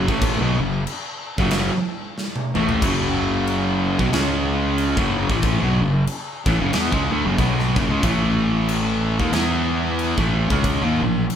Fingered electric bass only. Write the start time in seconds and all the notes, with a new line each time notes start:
0.08 A1
0.40 B1
0.59 F#1
1.38 F#1
2.55 A1
2.82 F#1
3.99 B1
4.13 C#2
4.97 F#1
5.29 A1
5.62 B1
5.80 F#1
6.46 A1
6.60 F#1
6.74 E2
6.92 C#2
7.10 D2
7.24 F#1
7.38 B1
7.75 F#1
7.89 C#2
8.03 A1
9.20 D#2
9.32 E2
10.17 A1
10.50 C#2
10.82 D#2
11.01 A1